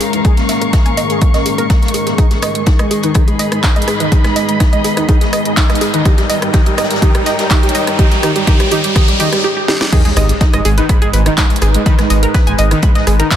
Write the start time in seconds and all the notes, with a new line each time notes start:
Already playing: G#2 D#3 G#3 C#4 A#4 F5 A#5 C#6
0.01 G#4, closed hi-hat, open hi-hat
0.13 E3, closed hi-hat
0.25 G#3 G#4 A#5, kick, closed hi-hat
0.37 A#3, snare, closed hi-hat
0.49 A#3 E5, snare, closed hi-hat, open hi-hat
0.62 A#3 A#4, closed hi-hat
0.73 A#4, kick, snare, closed hi-hat
0.86 A#3 G#5, closed hi-hat
0.97 A#3 D#5, closed hi-hat, open hi-hat
1.10 G#3 G#4, closed hi-hat
1.21 A#3 A#5, kick, closed hi-hat
1.34 A#3 D#5, snare, closed hi-hat
1.46 A#3 G#4, closed hi-hat, open hi-hat
1.58 A#3 A#4, closed hi-hat
1.70 A#3 A#4, kick, snare, closed hi-hat
1.83 A#3, snare, closed hi-hat
1.88 closed hi-hat
1.94 G#4, closed hi-hat, open hi-hat
2.07 A#3 G#4, snare, closed hi-hat
2.18 D#3 D#4 G#4 B4, kick, closed hi-hat, riser
2.31 G#3 G#4, snare, closed hi-hat
2.42 G#3 D#5, cross-stick, snare, closed hi-hat, open hi-hat
2.55 G#3, closed hi-hat
2.61 D#5
2.66 D#4, kick, snare, closed hi-hat
2.79 G#3 D#5, cross-stick, closed hi-hat
2.91 G#3 G#4, closed hi-hat, open hi-hat
3.03 D#3 D#4 B4, closed hi-hat
3.14 D#4 G#4, kick, cross-stick, closed hi-hat
3.23 B5
3.28 G#3 G#4, closed hi-hat
3.39 G#3 D#5, closed hi-hat, open hi-hat
3.52 G#3, cross-stick, closed hi-hat
3.63 D#4, kick, snare, clap, closed hi-hat
3.76 G#3 D#5, snare, closed hi-hat
3.82 closed hi-hat
3.88 G#3 G#4, cross-stick, closed hi-hat, open hi-hat
4.00 D#3 D#4 B4, closed hi-hat
4.12 D#3 D#4 G#4, kick, closed hi-hat
4.24 G#3 G#4, cross-stick, snare, closed hi-hat
4.36 G#3 D#5, snare, closed hi-hat, open hi-hat
4.49 G#3, closed hi-hat
4.60 D#4, kick, cross-stick, snare, closed hi-hat
4.73 G#3 D#5, closed hi-hat
4.84 G#3 G#4, closed hi-hat, open hi-hat
4.97 D#3 D#4 B4, cross-stick, closed hi-hat
5.09 D#3 D#4 G#4, kick, closed hi-hat
5.21 G#3 G#4, snare, closed hi-hat
5.33 G#3 D#5, cross-stick, closed hi-hat, open hi-hat
5.45 G#3, closed hi-hat
5.57 D#4, kick, snare, clap, closed hi-hat
5.69 G#3 D#5, cross-stick, snare, closed hi-hat
5.75 closed hi-hat
5.81 G#3 G#4, closed hi-hat, open hi-hat
5.94 D#3 D#4 B4, closed hi-hat
6.05 D#3 G3 D#4 G4 C#5, kick, cross-stick, closed hi-hat
6.13 A#4
6.18 G3 G4, snare, closed hi-hat
6.26 G3 D#5 G5, snare, open hi-hat
6.30 closed hi-hat
6.42 G3, cross-stick, closed hi-hat
6.53 D#3 D#4 G4, kick, snare, closed hi-hat
6.66 G3 G4, closed hi-hat
6.77 G3 D#5, cross-stick, snare, closed hi-hat, open hi-hat
6.84 snare, closed hi-hat
6.90 G3, snare, closed hi-hat
6.96 snare, closed hi-hat
7.02 D#3 D#4 G4, kick, closed hi-hat
7.15 G3 G4, cross-stick, closed hi-hat
7.26 G3 D#5, snare, closed hi-hat, open hi-hat
7.39 G3, snare, closed hi-hat
7.50 D#3 D#4 G4, kick, cross-stick, snare, clap, closed hi-hat
7.63 G3 G4, snare, closed hi-hat
7.69 closed hi-hat
7.75 G3 D#5, closed hi-hat, open hi-hat
7.87 G3, cross-stick, closed hi-hat
7.99 D#3 C#4 D#4 G4, kick, closed hi-hat
8.11 G3 G4, snare, closed hi-hat
8.23 D#3 D#4 G4, cross-stick, snare, closed hi-hat, open hi-hat
8.36 G3 G4, closed hi-hat
8.47 D#3 D#4 G4, kick, snare, closed hi-hat
8.60 G3 G4, cross-stick, closed hi-hat
8.71 D#3 D#4 G4, closed hi-hat, open hi-hat
8.84 G3 G4, closed hi-hat
8.95 D#3 D#4 G4, kick, cross-stick, snare, closed hi-hat, swell
9.08 G3 G4, closed hi-hat
9.19 D#3 D#4 G4, snare, closed hi-hat, open hi-hat
9.32 G3 G4, cross-stick, closed hi-hat
9.44 G4
9.57 G4
9.68 G4, snare
9.81 G4, snare
9.92 D#3 G#3 D#4 G#4 B4 G#5, kick, closed hi-hat, crash, sub drop
10.05 G#2 G#3 G#4 G#5, snare, closed hi-hat
10.16 G#1 G#2 G#3 D#5 D#6, cross-stick, snare, closed hi-hat, open hi-hat
10.29 G#2 G#3, closed hi-hat
10.41 D#4 D#5, kick, snare, closed hi-hat
10.53 G#1 G#2 G#3 D#5 D#6, cross-stick, closed hi-hat
10.65 G#1 G#2 G#3 G#4 G#5, closed hi-hat, open hi-hat
10.77 D#3 D#4 B4 B5, closed hi-hat
10.89 G#2 G#3 B5, kick, cross-stick, closed hi-hat
11.02 G#2 G#3 G#4 G#5, closed hi-hat
11.13 G#1 G#2 G#3 B4 B5, closed hi-hat, open hi-hat
11.26 D#3 D#4, cross-stick, closed hi-hat
11.37 G#2 G#3 D#4 D#5, kick, snare, clap, closed hi-hat
11.50 G#2 G#3, snare, closed hi-hat
11.56 closed hi-hat
11.61 G#1 G#4 G#5, cross-stick, closed hi-hat, open hi-hat
11.74 G#2 G#3, closed hi-hat
11.86 D#3 D#4 B5, kick, closed hi-hat
11.99 G#2 G#3, cross-stick, snare, closed hi-hat
12.10 G#1 G#2 G#3 D#5 D#6, snare, closed hi-hat, open hi-hat
12.23 G#2 G#3 A#4 A#5, closed hi-hat
12.34 B4 B5, kick, cross-stick, snare, closed hi-hat
12.47 G#1 G#2 G#3 G#5 G#6, closed hi-hat
12.58 G#1 G#2 G#3 D#5 D#6, closed hi-hat, open hi-hat
12.71 D#3 D#4, cross-stick, closed hi-hat
12.82 G#2 G#3 B5, kick, closed hi-hat
12.95 G#2 G#3 D#5 D#6, snare, closed hi-hat
13.07 G#1 G#2 G#3 G#4 G#5, cross-stick, closed hi-hat, open hi-hat
13.20 D#3 D#4 A#4 A#5, closed hi-hat
13.31 G#2 G#3 B4 B5, kick, snare, clap, closed hi-hat